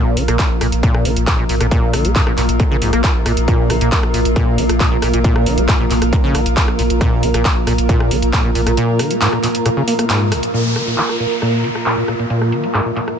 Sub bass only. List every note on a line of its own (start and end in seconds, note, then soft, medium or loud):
0.06 0.16 A#1 medium
0.17 0.28 A#1 loud
0.28 0.39 A#1 medium
0.50 0.60 A#1 medium
0.61 0.72 A#1 loud
0.72 0.83 A#1 medium
0.94 1.05 A#1 medium
1.05 1.16 A#1 loud
1.17 1.27 A#1 medium
1.39 1.49 A#1 medium
1.49 1.60 A#1 loud
1.61 1.71 A#1 medium
1.83 1.93 A#1 medium
1.93 2.04 A#1 medium
2.05 2.15 A#1 medium
2.27 2.37 A#1 medium
2.38 2.48 A#1 loud
2.49 2.59 A#1 medium
2.71 2.81 A#1 medium
2.82 2.92 A#1 loud
2.93 3.04 A#1 medium
3.15 3.25 A#1 medium
3.26 3.37 A#1 loud
3.37 3.48 A#1 medium
3.59 3.69 A#1 medium
3.70 3.81 A#1 loud
3.81 3.92 A#1 medium
4.03 4.13 A#1 medium
4.14 4.25 A#1 loud
4.25 4.36 A#1 medium
4.47 4.58 A#1 medium
4.58 4.69 A#1 loud
4.69 4.80 A#1 medium
4.92 5.02 A#1 medium
5.02 5.13 A#1 loud
5.14 5.24 A#1 medium
5.36 5.46 A#1 medium
5.46 5.57 A#1 loud
5.58 5.68 A#1 medium
5.80 5.90 A#1 medium
5.91 6.01 A#1 loud
6.02 6.12 A#1 medium
6.24 6.34 A#1 medium
6.35 6.45 A#1 loud
6.46 6.57 A#1 medium
6.68 6.78 A#1 medium
6.79 6.90 A#1 loud
6.90 7.01 A#1 medium
7.12 7.22 A#1 medium
7.23 7.34 A#1 medium
7.34 7.45 A#1 medium
7.56 7.66 A#1 medium
7.67 7.78 A#1 loud
7.78 7.89 A#1 medium
8.00 8.10 A#1 medium
8.11 8.22 A#1 loud
8.22 8.33 A#1 medium
8.44 8.55 A#1 medium
8.55 8.66 A#1 loud
8.67 8.77 A#1 medium